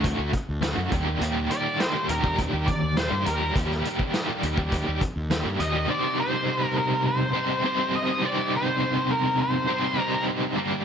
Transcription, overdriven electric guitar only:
Already playing: A2 D3 A3 F#4
0.17 D3 A3 F#4
0.32 muted overdriven electric guitar stroke
0.61 D2 A2 D3 A3 F#4
0.76 D3 A3 F#4
0.91 D#2 A#2 D#3 G3 G4
1.05 D#3 G3 G4
1.20 D#2 A#2 D#3 G3 G4
1.50 A#2 D#3 G3 G4
1.78 D#2 A#2 D#3 G3 G4
1.94 D#3 G3 G4
2.09 A#2 D#3 G3 G4
2.24 D#3 G3 G4
2.54 D#3 G3 G4
2.69 muted overdriven electric guitar stroke
2.97 D#2 A#2 D#3 G3 G4
3.12 D#3 G3 G4
3.26 A#2 D#3 G3 G4
3.40 D#3 G3 G4
3.56 D#2 A#2 D#3 G3 G4
3.85 A#2 D#3 G3 G4
4.13 D#2 A#2 D#3 G3 G4
4.28 D#3 G3 G4
4.43 A#2 D#3 G3 G4
4.58 D#3 G3 G4
4.87 D#3 G3 G4
5.02 muted overdriven electric guitar stroke
5.30 D#2 A#2 D#3 G3 G4
5.45 D#3 G3 G4
5.60 A#2 D#3 G3 G4
5.73 D#3 G3 G4
5.88 C3 G3 C4 D#4 G4 C5
7.33 C3 G3 C4 D#4 G4 C5
7.62 C3 G3 C4 D#4 G4 C5
8.21 C3 G3 C4 D#4 G4
8.25 C5
9.68 C3 G3 C4 D#4 G4 C5
9.97 C3 G3 C4 D#4 G4 C5
10.55 G2 D3 G3 A#3 D4 G4

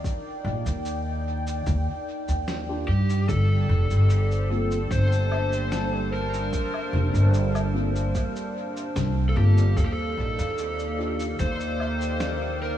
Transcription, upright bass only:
0.45 A#1
0.66 D#2
1.67 D#2
2.28 D#2
2.88 G2
3.29 G1
3.69 F1
3.91 G1
4.91 G1
6.93 F1
7.14 G1
8.96 C2
9.36 G1
9.77 D#2
10.18 A#1
10.39 D#2
11.40 D#2

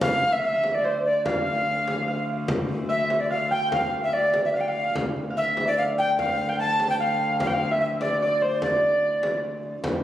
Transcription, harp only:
Already playing: C5 D5
0.02 F5
0.18 F5
0.34 E5
0.44 E5
0.74 D5
0.85 C5
1.26 F5
2.08 F5
2.89 E5
3.30 F5
3.51 G5
3.72 F5
4.14 D5
4.54 F5
4.69 F5
5.30 F5
5.38 E5
5.68 D5
5.79 F5
5.99 G5
6.20 F5
6.49 G5
6.59 A5
6.91 G5
7.00 F5
7.41 F5
7.54 F5
7.71 E5
7.82 E5
8.01 D5
8.22 D5
8.42 C5
8.64 D5

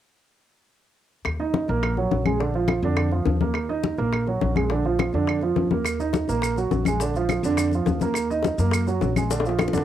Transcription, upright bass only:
1.25 D#2
1.69 A#1
2.12 A#1
2.83 F2
3.26 D#2
3.98 A#1
4.42 A#1
5.14 F2
5.57 D#2
6.29 A#1
6.71 A#1
7.43 F2
7.86 D#2
8.58 F#2
9.02 A#1
9.74 F2

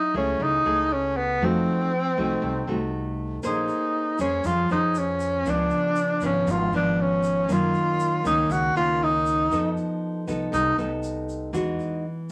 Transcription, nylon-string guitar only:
Already playing: F#3
0.14 A3 E4 G#4
0.40 C#3
0.65 A3 E4 G#4
1.42 F3 A3 D#4 F#4
2.17 A3 D#4 F#4
2.43 C3
2.68 A3 D#4 F#4
3.43 A#3 C#4 G#4 C5
4.20 C#4 G#4 C5
4.46 F3
4.70 C#4 G#4 C5
5.46 C#3 F3 B3 D4
6.22 F3 B3 D4
6.47 G#2
6.74 F3 B3
7.49 F#2 D#3 A#3 C#4
8.24 D#3 A#3 C#4
8.49 C#3
8.75 D#3 A#3 C#4
9.51 F3 B3 D#4 A4
10.27 B3 D#4 A4
10.53 C3
10.78 B3 D#4 A4
11.53 E3 G#3 D#4 F#4

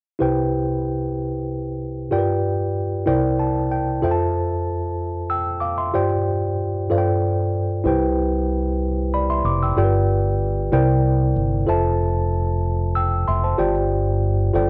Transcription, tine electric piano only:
0.19 C2 C3 E4 G4 B4 C5 G5
2.11 G2 F4 G4 A#4 D5 G5
2.18 B4
3.06 C2 C3 E4 A#4 C5 D5 G5
3.39 A5
3.71 G5
4.02 F2 F4 A4 C5 E5 G5
4.11 A5
5.30 G5 E6
5.60 F5 D6
5.78 E5 C6
5.94 G2 F4 G4 C5 D5 G5
6.90 G2 F4 A4 C5 D5 F5
6.98 G5
7.84 C3 E4 G4 B4 C5 G5
9.14 D5 B5
9.30 E5 C6
9.45 D6
9.63 G5 E6
9.77 G2 F4 G4 A4 D5 G5
9.84 B4
10.72 C3 E4 A#4 C5 D5 G5
11.66 F4 A4 C5 E5 A5
12.95 G5 E6
13.28 E5 C6
13.44 C5 A5
13.58 G2 F4 G4 C5 D5 G5
14.54 G2 F4 A4 C5 D5 G5

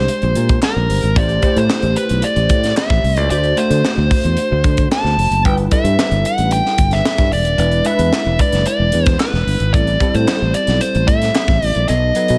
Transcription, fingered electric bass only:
0.23 A#1
0.36 A#2
0.76 A#1
0.90 G1
1.03 G#1
1.16 A1
1.56 A2
1.83 A1
2.10 B1
2.36 A1
2.50 A2
2.90 A1
3.04 C2
3.17 C#2
3.31 D2
3.70 D3
3.97 D2
4.25 E2
4.52 D2
4.64 D3
5.04 D2
5.17 F1
5.31 F#1
5.45 G1
5.84 G2
6.11 G1
6.38 A1
6.79 G1
7.19 G2
7.32 E1
7.46 D#1
7.58 E1
7.99 E2
8.26 E1
8.53 F#1
8.79 E1
8.94 E2
9.33 E1
9.47 G1
9.60 G#1
9.74 A1
10.14 A2
10.42 A1
10.68 B1
10.95 A1
11.08 A2
11.48 A1
11.62 A1
11.76 A#1
11.89 B1
12.30 B2

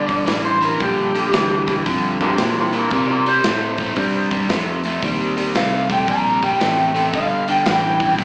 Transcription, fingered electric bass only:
Already playing: G1
0.27 A1
0.80 A#1
1.34 D2
1.86 F2
2.38 A#2
2.92 C3
3.45 A2
3.97 G2
4.49 F2
5.03 D#2
5.56 C2
6.08 A#1
6.62 A1
7.14 G1
7.66 A1
8.19 A#1

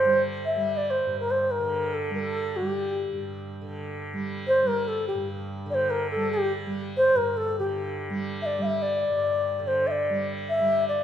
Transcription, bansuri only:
Already playing: C5
0.45 E5
0.77 D5
0.87 C5 D5
1.20 A#4
1.31 C5
1.51 A#4
1.94 A4
2.15 A4 A#4
2.56 F#4
2.68 G4
4.47 C5
4.67 A#4
4.88 A4
5.08 G4
5.70 D5
5.74 C5
5.90 A#4
6.11 A4
6.32 G4
6.97 C5
7.17 A#4
7.37 A4
7.59 G4
8.42 D5 E5
8.62 E5 F5
8.82 D5
9.67 C5
9.87 D5 E5
10.49 E5
10.89 D5

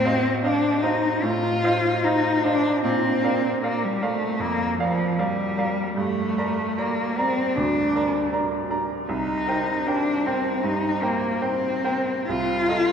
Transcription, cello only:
Already playing: C4
0.45 D4
0.83 D#4
1.23 F4
2.04 D#4
2.45 D4
2.83 C4
3.63 A#3
3.84 G3
4.02 A3
4.40 A#3
4.80 F3
5.19 G3
5.97 A3
6.78 A#3
7.17 C4
7.55 D4
9.07 D#4
9.87 D4
10.26 C4
10.64 D#4
11.03 A#3
11.42 C4
12.28 F4

